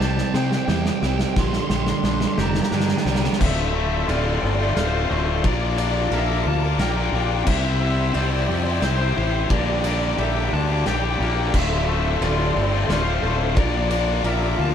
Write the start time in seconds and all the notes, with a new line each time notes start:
Already playing: C3 E3 G3 C4 G4
0.00 C2 C3 G3 C4 G4 A5, snare
0.09 A5
0.17 A5, snare
0.25 A5
0.34 C3 G3 C4 C5 G5, snare
0.43 G5
0.50 G5, snare
0.58 G5
0.65 E2 C3 G3 G4 G5, snare
0.70 C4 G5
0.81 G5
0.86 G5, snare
0.96 G5
1.01 C2 C3 G3 C4 G5, snare
1.10 G5
1.18 G5, snare
1.26 G5
1.33 A#1 G2 D3 A#3 G5, kick, snare
1.38 D3 G3 C6
1.45 C6
1.53 C6, snare
1.60 C6
1.68 A#1 G2 D3 G3 C6, snare
1.75 C6
1.82 C6
1.87 C6, snare
1.97 C6
2.03 A#1 G2 D3 G3 D4 C6, snare
2.13 C6
2.21 C6, snare
2.28 C6
2.34 F1 G4 C6, snare
2.39 G2 D3 G3 A5 A#5
2.47 A#5
2.55 A#5, snare
2.62 A#5, snare
2.70 G2 D4 G5 A#5, snare
2.74 D3 G3 A#5
2.80 G5 A#5, snare
2.89 G5 A#5, snare
2.97 G5 A#5, snare
3.04 C2 G2 D3 G3 G5 A#5, snare
3.12 G5 A#5, snare
3.20 G5 A#5, snare
3.27 G5 A#5
3.33 G5, snare
3.40 D1 D2 A2 D3 A3 C4 F4 A4 D5 E5 C6, kick, crash
3.50 E5
3.58 E5
3.66 E5
3.72 D3 A3 C4 E5
3.77 F4 E5
3.90 E5
3.97 E5
4.03 D2 E5
4.08 D1 A2 D3 A3 C4 F4 D5, ride
4.16 D5
4.24 D3 A3 C4 F4 D5
4.31 D5
4.39 G1 C4 D5, muted distorted electric guitar stroke
4.46 D5
4.55 F4 D5
4.59 D3 A3 C4 D5
4.70 D5
4.75 D1 D3 A3 C4 F4 C5, snare, ride
4.87 C5
4.93 D3 A3 C4 F4 C5
5.03 C5
5.09 D1 D3 A3 C4 C5
5.13 F4 C5
5.25 C5
5.33 C5
5.44 A#1 A#2 F3 A#3 D4 F4 A#4 D5 D6, kick, ride
5.52 D5
5.60 D5
5.67 D5
5.76 A#3 D4 F4 D5, ride
5.80 A#4
5.84 D5
5.91 D5
6.00 D5
6.11 A#1 A#2 F3 A#3 D4 F4 E5, ride
6.15 A#4
6.29 A#3 D4 F4 A#4
6.46 D2 F4 A5, muted distorted electric guitar stroke
6.62 A#3 D4 F4 A#4
6.79 A#1 A#3 D4 F4 A#4 G5, snare, ride
6.90 G5
6.97 A#3 D4 F4 A#4 G5
7.04 G5
7.11 A#1 A#3 D4 F4 G5
7.16 A#4 G5
7.27 G5
7.35 G5
7.43 C2 C3 C5 E5 G5 E6, kick, crash
7.48 G3 C4 E4 G4 C5 E5
7.56 E5
7.64 E5
7.70 E5
7.80 C4 E4 G4 E5
7.84 C5 E5
7.94 E5
8.02 E5
8.09 E5
8.14 C2 C3 G3 C4 E4 G4 C5 D5, ride
8.24 D5
8.31 C4 E4 G4 C5 D5
8.39 D5
8.47 F2 G4 D5, muted distorted electric guitar stroke
8.55 D5
8.63 G4 C5 D5
8.68 C4 E4 D5
8.82 C2 C4 E4 G4 C5, snare, ride
8.92 C5
8.98 C4 E4 G4 C5
9.07 C5
9.15 A1 C4 E4 G4 C5
9.23 C5
9.31 C5
9.36 C5
9.45 C5
9.49 A#1 G2 D3 G3 A#3 D4 G4 A#4 D5 D6, kick, ride
9.60 D5
9.66 D5
9.74 D5
9.83 G3 A#3 D4 D5, ride
9.88 G4 D5
9.99 D5
10.07 D5
10.18 A#1 G2 D3 G3 A#3 D4 G4 E5, ride
10.35 G3 A#3 D4 G4
10.52 D2 D4 A5, muted distorted electric guitar stroke
10.68 A#3 D4 G4
10.72 G3
10.85 A#1 G3 A#3 D4 G4 G5, snare, ride
10.94 G5
11.02 G3 A#3 D4 G4 G5
11.10 G5
11.17 A#1 G3 A#3 D4 G5
11.22 G4 G5
11.33 G5
11.40 G5
11.48 G5
11.53 D1 D2 A2 D3 A3 C4 F4 A4 D5 E5 C6, kick, crash
11.63 E5
11.70 E5
11.78 E5
11.86 D3 A3 C4 E5
11.90 F4 E5
12.01 E5
12.09 E5
12.16 E5
12.21 D1 D2 A2 D3 A3 C4 D5, ride
12.25 F4
12.32 D5
12.39 D3 A3 C4 F4 D5
12.47 D5
12.54 G1 C4 D5, muted distorted electric guitar stroke
12.63 D5
12.70 C4 F4 D5
12.74 D3 A3 D5
12.84 D5
12.89 D1 D3 A3 C4 F4 C5, snare, ride
12.99 C5
13.05 D3 A3 C4 F4 C5
13.14 C5
13.21 D1 D3 A3 C4 F4 C5
13.31 C5
13.38 C5
13.46 C5
13.55 A#1 A#2 F3 A#3 D4 F4 A#4 D6, kick, ride
13.60 D5
13.68 D5
13.75 D5
13.83 D5
13.89 A#3 D4 F4 A#4 D5, ride
13.98 D5
14.05 D5
14.13 D5
14.21 A#1 A#2 F3 D5, ride
14.25 A#3 D4 F4 A#4 E5
14.40 A#3 D4 F4 A#4
14.57 D2 F4 A5, muted distorted electric guitar stroke